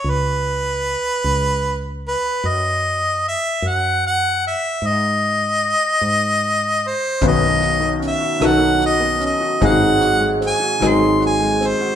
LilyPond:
<<
  \new Staff \with { instrumentName = "Harmonica" } { \time 6/8 \key b \mixolydian \tempo 4. = 50 b'2~ b'8 b'8 | dis''4 e''8 fis''8 fis''8 e''8 | dis''2~ dis''8 bis'8 | dis''4 e''8 fis''8 dis''8 dis''8 |
fis''4 gis''8 bis''8 gis''8 bis'8 | }
  \new Staff \with { instrumentName = "Upright piano" } { \time 6/8 \key b \mixolydian r2. | r2. | r2. | <dis fis cis' b'>4. <fis cis' dis' a'>4. |
<fis bis dis' gis'>4. <fis bis dis' gis'>4. | }
  \new Staff \with { instrumentName = "Upright piano" } { \clef bass \time 6/8 \key b \mixolydian r2. | r2. | r2. | <b,, b,>2. |
<gis,, gis,>2. | }
  \new Staff \with { instrumentName = "Felt piano" } { \time 6/8 \key b \mixolydian r2. | r2. | r2. | dis16 b16 fis'16 b16 cis'16 fis'16 dis16 b16 fis'16 b16 cis'16 fis'16 |
dis16 gis16 fis'16 gis16 bis16 fis'16 dis16 gis16 fis'16 gis16 bis16 fis'16 | }
  \new Staff \with { instrumentName = "Fretless electric bass" } { \clef bass \time 6/8 \key b \mixolydian cis,4. cis,4. | fis,4. fis,4. | gis,4. gis,4. | b,,4. b,,4. |
gis,,4. gis,,4. | }
  \new DrumStaff \with { instrumentName = "Drums" } \drummode { \time 6/8 r4. r4. | r4. r4. | r4. r4. | <hh bd>8 hh8 hh8 <hh ss>8 hh8 hh8 |
<hh bd>8 hh8 hh8 <hh ss>8 hh8 hh8 | }
>>